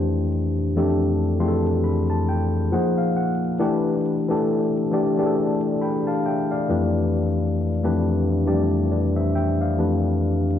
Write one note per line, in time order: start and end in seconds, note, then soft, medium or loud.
0.00 0.53 F2 medium
0.00 0.53 E3 medium
0.00 0.56 A3 medium
0.00 0.53 D4 medium
0.00 0.54 G4 medium
0.00 0.54 C5 medium
0.76 1.28 F2 medium
0.76 1.28 E3 medium
0.76 1.29 A3 medium
0.76 1.29 D4 medium
0.76 1.29 G4 medium
0.76 1.29 A4 medium
1.39 2.71 F2 medium
1.39 2.71 E3 medium
1.39 2.71 A3 medium
1.39 2.71 D4 medium
1.39 2.72 G4 medium
1.39 1.47 G#4 medium
1.39 1.80 C6 medium
1.48 2.75 A4 medium
1.84 2.07 B5 medium
2.10 2.26 A5 medium
2.29 2.69 G5 medium
2.71 3.46 F3 medium
2.71 3.46 A#3 medium
2.71 3.46 D#4 medium
2.71 3.47 G#4 medium
2.71 3.47 C5 medium
2.71 2.96 F#5 medium
2.98 3.14 F5 medium
3.17 3.57 F#5 medium
3.59 4.15 E3 loud
3.59 4.15 A3 medium
3.59 4.15 D4 loud
3.59 4.15 G4 loud
3.59 4.16 B4 loud
4.29 4.81 E3 medium
4.29 4.81 A3 medium
4.29 4.82 D4 medium
4.29 4.82 G4 medium
4.29 4.82 A4 loud
4.92 5.12 E3 medium
4.92 5.13 A3 medium
4.92 5.13 D4 medium
4.92 5.13 G4 medium
4.92 5.13 D5 medium
5.18 6.59 E3 medium
5.18 6.60 A3 medium
5.18 6.60 D4 medium
5.18 6.60 G4 medium
5.18 5.24 G#4 medium
5.26 6.64 A4 medium
5.82 6.05 G5 medium
5.82 6.05 B5 medium
6.07 6.24 F5 medium
6.07 6.23 A5 medium
6.26 6.49 E5 medium
6.26 6.49 G5 medium
6.51 6.92 D5 medium
6.51 6.92 F5 medium
6.68 7.58 F2 medium
6.68 7.58 E3 medium
6.68 7.59 A3 medium
6.68 7.59 D4 medium
6.68 7.59 G4 medium
6.68 7.59 B4 medium
7.83 8.35 F2 medium
7.83 8.35 E3 medium
7.83 8.35 A3 medium
7.83 8.35 D4 medium
7.83 8.35 G4 medium
7.83 8.36 B4 medium
8.45 9.77 F2 medium
8.45 9.77 E3 medium
8.45 8.53 G3 medium
8.45 9.78 D4 medium
8.45 9.78 G4 medium
8.45 8.90 D5 medium
8.53 9.77 A3 medium
8.91 9.14 B4 soft
8.91 9.14 D5 medium
9.16 9.33 C5 medium
9.16 9.33 E5 medium
9.35 9.58 E5 medium
9.35 9.58 G5 medium
9.61 10.02 D5 medium
9.61 10.01 F5 medium
9.78 10.52 F2 medium
9.78 10.52 E3 medium
9.78 10.52 A3 medium
9.78 10.52 D4 medium
9.78 10.52 G4 medium
9.78 10.53 B4 medium